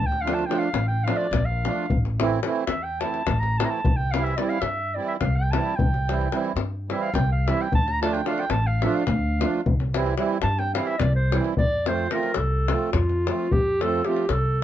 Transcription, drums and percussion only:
0.12 davul high
0.28 davul high
0.39 davul high
0.51 davul high
0.63 davul high
0.74 davul high
1.08 davul high
1.33 davul high, davul low
1.65 davul high
1.90 davul low
2.05 davul high
2.20 davul high
2.43 davul high
2.67 davul high
3.01 davul high
3.14 davul high
3.27 davul high, davul low
3.43 davul high
3.60 davul high
3.85 davul low
4.14 davul high
4.27 davul high
4.38 davul high
4.51 davul high
4.62 davul high
5.21 davul high, davul low
5.53 davul high
5.79 davul low
5.94 davul high
6.09 davul high
6.21 davul high
6.32 davul high
6.45 davul high
6.57 davul high
6.90 davul high
7.15 davul high, davul low
7.48 davul high
7.72 davul low
7.88 davul high
8.03 davul high
8.15 davul high
8.26 davul high
8.38 davul high
8.50 davul high
8.82 davul high
9.07 davul high, davul low
9.41 davul high
9.66 davul low
9.80 davul high
9.94 davul high
10.06 davul high
10.17 davul high
10.42 davul high
10.59 davul high
10.75 davul high
10.87 davul high
11.00 davul high, davul low
11.32 davul high
11.44 davul high
11.57 davul low
11.86 davul high
12.11 davul high
12.23 davul high
12.34 davul high
12.68 davul high
12.93 davul high, davul low
13.09 davul high
13.27 davul high
13.51 davul low
13.81 davul high
14.05 davul high
14.16 davul high
14.29 davul high

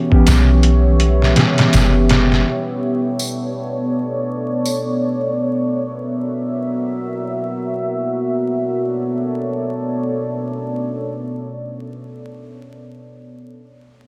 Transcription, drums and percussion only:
0.12 kick
0.27 snare, closed hi-hat, tambourine
0.63 closed hi-hat
1.00 closed hi-hat
1.22 snare
1.36 snare, closed hi-hat
1.58 snare, closed hi-hat
1.73 snare, closed hi-hat, tambourine
2.09 snare, closed hi-hat
2.32 snare
3.19 tambourine
4.66 tambourine

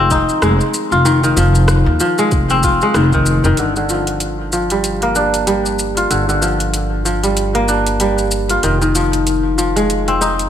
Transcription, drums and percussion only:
0.11 kick, shaker
0.29 shaker
0.42 cross-stick, shaker
0.61 shaker
0.74 shaker
0.92 shaker
1.06 shaker
1.24 shaker
1.37 shaker
1.55 shaker
1.68 cross-stick, shaker
2.00 shaker
2.18 shaker
2.32 kick, shaker
2.50 shaker
2.63 kick, shaker
2.81 shaker
2.94 cross-stick, shaker
3.13 kick, shaker
3.26 shaker
3.44 shaker
3.57 closed hi-hat, shaker
3.76 shaker
3.89 shaker
4.07 closed hi-hat, shaker
4.20 closed hi-hat, shaker
4.52 shaker
4.70 closed hi-hat, shaker
4.84 closed hi-hat, shaker
5.02 closed hi-hat
5.15 shaker
5.34 closed hi-hat, shaker
5.47 closed hi-hat, shaker
5.66 shaker
5.79 shaker
5.97 closed hi-hat, shaker
6.11 closed hi-hat, shaker
6.29 shaker
6.42 shaker
6.60 closed hi-hat, shaker
6.74 closed hi-hat, shaker
7.06 shaker
7.24 closed hi-hat, shaker
7.37 closed hi-hat, shaker
7.55 closed hi-hat
7.68 shaker
7.87 closed hi-hat, shaker
8.00 closed hi-hat, shaker
8.18 shaker
8.31 shaker
8.49 closed hi-hat, shaker
8.63 closed hi-hat, shaker
8.82 shaker
8.95 shaker
9.13 closed hi-hat, shaker
9.27 closed hi-hat, shaker
9.59 shaker
9.77 closed hi-hat, shaker
9.90 closed hi-hat, shaker
10.08 closed hi-hat
10.22 shaker
10.39 closed hi-hat, shaker

